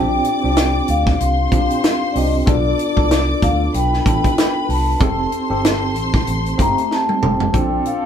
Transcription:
Already playing: fingered electric bass A#1, tine electric piano C4 D4 F4 G4, string section D5 D6, vibraphone G5
0.24 closed hi-hat
0.43 fingered electric bass C2, tine electric piano C4 D4 F4 G4
0.57 snare, closed hi-hat
0.88 fingered electric bass D2, vibraphone F5, closed hi-hat
1.07 kick, snare
1.20 fingered electric bass C2, string section C5 C6, closed hi-hat
1.51 fingered electric bass A#1, tine electric piano C4 D4 F4 G4, kick, closed hi-hat
1.70 closed hi-hat
1.84 snare, closed hi-hat
2.12 fingered electric bass C2, tine electric piano C4 D4 F4, vibraphone D5, open hi-hat
2.17 tine electric piano G4, vibraphone D#5
2.46 fingered electric bass B1, tine electric piano B3 D4 F4 A4, string section D5 D6, vibraphone D5, kick, closed hi-hat
2.79 closed hi-hat
2.96 fingered electric bass C2, tine electric piano B3 D4 F4 A4, kick
3.11 snare, closed hi-hat
3.42 fingered electric bass D2, tine electric piano B3 D4 F4 A4, vibraphone F5, kick, closed hi-hat
3.74 fingered electric bass B1, string section B4 B5, vibraphone G5, closed hi-hat
3.93 snare
4.05 fingered electric bass A1, tine electric piano B3 D4 F4 A4, kick, closed hi-hat
4.24 kick, closed hi-hat
4.38 snare, closed hi-hat
4.69 fingered electric bass C2, vibraphone A5, open hi-hat
4.99 fingered electric bass F1, tine electric piano C4 D#4 G4 A4, string section C5 C6, kick, closed hi-hat
5.32 closed hi-hat
5.50 fingered electric bass G1, tine electric piano C4 D#4 G4 A4
5.65 snare, closed hi-hat
5.96 fingered electric bass A1, closed hi-hat
6.14 kick, snare
6.27 fingered electric bass A1, closed hi-hat
6.46 closed hi-hat
6.58 fingered electric bass G1, tine electric piano A3 C4 D#4 G4, vibraphone A#5, kick, closed hi-hat
6.78 closed hi-hat
6.91 vibraphone A5, snare
7.09 high tom
7.22 fingered electric bass F1, tine electric piano C4 D#4 G4 A4, mid tom
7.40 floor tom
7.53 fingered electric bass A#1, horn section F3 D4 A4, tine electric piano C4 D4 F4 A4, vibraphone G5, kick, closed hi-hat
7.85 vibraphone F5, closed hi-hat

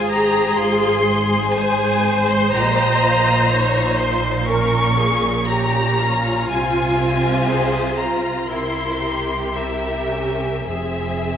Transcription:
Already playing: double bass section G#1, cello section G#2, violin section F4 C5 G#5, viola section G#4
0.10 violin section G4 A#5
0.57 double bass section G#1, cello section G#2, violin section F4 C5 C6
1.06 violin section G#4
1.55 viola section C5, violin section G#5
2.29 violin section C6
2.53 double bass section A#1, cello section A#2, violin section G4 D#5 A#5
3.03 violin section F4
3.50 violin section D#4 C#5
3.97 violin section C5 C6
4.46 violin section C#4 A#4 C#6, viola section A#4
4.97 viola section G#4, violin section A#4
5.48 violin section C#4 C#5 A#5, viola section G4
5.99 viola section F4
6.50 double bass section C2, cello section C3, violin section F4 C5 G#5
7.50 viola section G#4
7.98 viola section F4, violin section A#5
8.48 double bass section C2, cello section C3, viola section E4, violin section E4 A#4 C6
9.01 viola section G4
9.54 violin section E4 A#4 E5
10.09 violin section C#4
10.66 double bass section F1, cello section F2, violin section C4 G#4 E5, viola section G#4

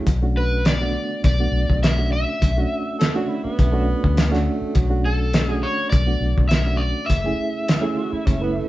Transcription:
Already playing: tenor saxophone F#3
0.06 fingered electric bass B1, kick, closed hi-hat
0.22 reed electric piano A3 C#4 D4 F#4
0.37 electric slide guitar B4
0.65 electric slide guitar D5, snare, closed hi-hat
0.80 reed electric piano A3 B3 D4 F#4
1.24 fingered electric bass B1, electric slide guitar D5, kick, closed hi-hat
1.39 reed electric piano A3 B3 D4 F#4
1.52 fingered electric bass B1
1.69 fingered electric bass B1, kick
1.83 electric slide guitar E5, snare, closed hi-hat
1.97 reed electric piano A3 C#4 D4 F#4
2.13 electric slide guitar E5
2.42 fingered electric bass B1, kick, closed hi-hat
2.56 reed electric piano A3 C#4 D4 F#4
2.99 tenor saxophone A4, snare, closed hi-hat
3.14 reed electric piano A3 C#4 D4 F#4, tenor saxophone F#4
3.29 tenor saxophone E4
3.44 tenor saxophone B3, muted fingered electric bass stroke
3.59 fingered electric bass B1, kick, closed hi-hat
3.72 reed electric piano A3 C#4 D4 F#4
4.04 fingered electric bass D2, kick
4.17 snare, closed hi-hat
4.31 tenor saxophone A3, reed electric piano A3 C#4 D4 F#4, snare
4.61 muted fingered electric bass stroke
4.75 fingered electric bass B1, tenor saxophone F#3, kick, closed hi-hat
4.90 reed electric piano A3 C#4 D4 F#4
5.05 electric slide guitar A4
5.33 snare, closed hi-hat
5.47 reed electric piano A3 C#4 D4 F#4, electric slide guitar G#4
5.63 electric slide guitar C#5
5.90 fingered electric bass B1, electric slide guitar D5, kick, closed hi-hat
6.06 reed electric piano A3 B3 D4 F#4
6.21 fingered electric bass B1
6.38 fingered electric bass B1, kick
6.49 electric slide guitar E5, snare, closed hi-hat
6.65 reed electric piano A3 C#4 D4 F#4
6.77 electric slide guitar D5
7.06 fingered electric bass F#1, electric slide guitar E5, kick, closed hi-hat
7.24 reed electric piano A3 C#4 E4 G#4
7.68 snare, closed hi-hat
7.81 reed electric piano A3 C#4 E4 G#4
7.96 tenor saxophone F#4
8.13 tenor saxophone E4, muted fingered electric bass stroke
8.26 fingered electric bass F#1, tenor saxophone C#4, kick, closed hi-hat
8.39 reed electric piano A3 C#4 E4 B4, tenor saxophone B3
8.56 tenor saxophone A3

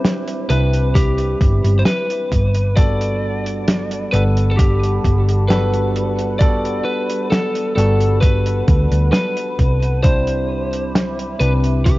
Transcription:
Already playing: tine electric piano G3 C4 D4 E4 B4, ambient pad C4 E5 B5 D6, lead electric guitar C5
0.04 snare, closed hi-hat
0.28 closed hi-hat
0.48 fingered electric bass C2, tine electric piano G3 C4 D4 E4 B4, lead electric guitar B4, closed hi-hat
0.73 closed hi-hat
0.95 lead electric guitar G4, kick, closed hi-hat
1.18 closed hi-hat
1.41 fingered electric bass G1, kick, closed hi-hat
1.64 fingered electric bass G1, closed hi-hat
1.79 lead electric guitar C5
1.85 lead electric guitar B4, snare, closed hi-hat
2.10 closed hi-hat
2.31 fingered electric bass G1, ambient pad G3 F#5 A5, kick, closed hi-hat
2.54 closed hi-hat
2.75 tine electric piano G3 B3 D4 F#4 A4, lead electric guitar D5, kick, closed hi-hat
3.01 closed hi-hat
3.46 closed hi-hat
3.68 snare, closed hi-hat
3.91 closed hi-hat
4.12 fingered electric bass G1, tine electric piano G3 B3 D4 A4 F#5, lead electric guitar B4, closed hi-hat
4.37 closed hi-hat
4.51 lead electric guitar A4
4.57 lead electric guitar G4, kick, closed hi-hat
4.83 closed hi-hat
5.04 fingered electric bass G1, kick, closed hi-hat
5.29 closed hi-hat
5.48 tine electric piano G3 B3 D4 F#4 A4, lead electric guitar B4, snare, closed hi-hat
5.74 closed hi-hat
5.96 closed hi-hat
6.19 closed hi-hat
6.39 tine electric piano G3 B3 D4 F#4 A4, lead electric guitar D5, kick, closed hi-hat
6.65 closed hi-hat
6.85 lead electric guitar B4
7.10 closed hi-hat
7.30 lead electric guitar A4, snare, closed hi-hat
7.55 closed hi-hat
7.76 fingered electric bass G1, tine electric piano G3 B3 D4 F#4 A4, lead electric guitar A4, closed hi-hat
8.00 closed hi-hat
8.21 lead electric guitar B4, kick, closed hi-hat
8.46 closed hi-hat
8.68 fingered electric bass D2, kick, closed hi-hat
8.91 fingered electric bass D2, closed hi-hat
9.12 lead electric guitar B4, snare, closed hi-hat
9.37 closed hi-hat
9.59 fingered electric bass C2, kick, closed hi-hat
9.82 closed hi-hat
10.03 tine electric piano G3 C4 D4 E4 C5, ambient pad C4 E5 D6, lead electric guitar C5, kick, closed hi-hat
10.27 closed hi-hat
10.73 closed hi-hat
10.95 snare, closed hi-hat
11.19 closed hi-hat
11.39 fingered electric bass C2, tine electric piano G3 C4 D4 E4 B4, lead electric guitar B4, closed hi-hat
11.64 closed hi-hat
11.85 lead electric guitar G4, kick, closed hi-hat

